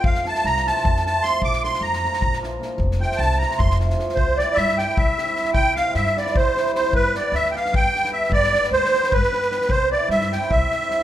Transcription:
<<
  \new Staff \with { instrumentName = "Accordion" } { \time 7/8 \key f \major \tempo 4 = 152 f''8 a''8 bes''8 a''4 a''8 c'''8 | d'''8 c'''8 bes''4. r4 | r8 g''8 a''8 bes''8 c'''8 r4 | \key c \major c''8 d''8 e''8 g''8 e''4. |
g''8 f''8 e''8 d''8 c''4 c''8 | b'8 d''8 e''16. g''32 f''8 g''4 e''8 | d''4 c''4 b'4. | c''8 d''8 e''8 g''8 e''4. | }
  \new Staff \with { instrumentName = "Hammered dulcimer" } { \time 7/8 \key f \major r8 <f a c' f'>8 r8 <f a c' f'>8 r8 <f a c' f'>8 <f a c' f'>8 | r8 <f bes d' f'>8 r8 <f bes d' f'>8 r8 <f bes d' f'>8 <f bes d' f'>8 | r8 <f a c' f'>8 r8 <f a c' f'>8 r8 <f a c' f'>8 <f a c' f'>8 | \key c \major r8 <g c' e' g'>8 r8 <g c' e' g'>8 r8 <g c' e' g'>8 <g c' e' g'>8 |
r8 <g c' e' g'>8 r8 <g c' e' g'>8 r8 <g c' e' g'>8 <g c' e' g'>8 | r8 <g b d' g'>8 r8 <g b d' g'>8 r8 <g b d' g'>8 <g b d' g'>8 | r8 <g b d' g'>8 r8 <g b d' g'>8 r8 <g b d' g'>8 <g b d' g'>8 | r8 <g c' e' g'>8 r8 <g c' e' g'>8 r8 <g c' e' g'>8 <g c' e' g'>8 | }
  \new Staff \with { instrumentName = "Upright bass" } { \clef bass \time 7/8 \key f \major f,4 c,4 f,4. | bes,,4 f,4 bes,,4. | f,,4 c,4 f,,4. | \key c \major c,4 g,4 c,8 r4 |
c,4 g,4 c,8 r4 | g,,4 d,4 g,,8 r4 | g,,4 d,4 g,,8 r4 | c,4 g,4 c,8 r4 | }
  \new DrumStaff \with { instrumentName = "Drums" } \drummode { \time 7/8 bd16 sn16 sn16 sn16 sn16 sn16 sn16 sn16 bd16 sn16 sn8 sn8 | bd16 sn16 sn16 sn16 sn16 sn16 sn16 sn16 bd16 sn16 sn8 sn8 | bd16 sn16 sn16 sn16 sn16 sn16 sn16 sn16 bd16 sn16 sn16 sn16 sn16 sn16 | bd8 sn8 sn16 sn16 sn16 sn16 bd8 sn16 sn16 sn16 sn16 |
bd8 sn8 sn16 sn16 sn16 sn16 bd8 sn16 sn16 sn16 sn16 | bd8 sn8 sn16 sn16 sn16 sn16 bd8 sn16 sn8 sn16 | bd16 sn16 sn16 sn16 sn16 sn16 sn16 sn16 bd16 sn16 sn16 sn16 sn16 sn16 | bd4 sn16 sn16 sn16 sn16 bd8 sn16 sn16 sn16 sn16 | }
>>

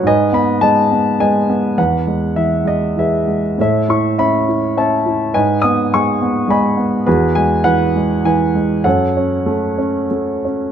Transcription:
<<
  \new Staff \with { instrumentName = "Grand piano" } { \time 3/4 \key e \major \tempo 4 = 102 << { dis''8 b''8 a''4 gis''4 | fis''4 e''8 dis''8 e''8. r16 | e''8 cis'''8 b''4 a''4 | gis''8 dis'''8 cis'''4 b''4 |
b'8 gis''8 fis''4 gis''4 | fis''2 r4 | } \\ { <b' gis''>4 dis''4 <b' dis''>4 | b'4. r8 <gis' b'>4 | <a' cis''>4 e''4 <cis'' e''>4 | <b' dis''>4 gis''4 <dis'' gis''>4 |
<fis' gis'>4 b'4 b'4 | <a' cis''>2 r4 | } >> }
  \new Staff \with { instrumentName = "Grand piano" } { \clef bass \time 3/4 \key e \major gis,8 b8 gis8 b8 gis8 b8 | e,8 gis8 e8 gis8 e8 gis8 | a,8 e'8 cis'8 e'8 cis'8 e'8 | gis,8 b8 gis8 b8 gis8 b8 |
e,8 gis8 e8 gis8 e8 gis8 | fis,8 cis'8 a8 cis'8 a8 cis'8 | }
>>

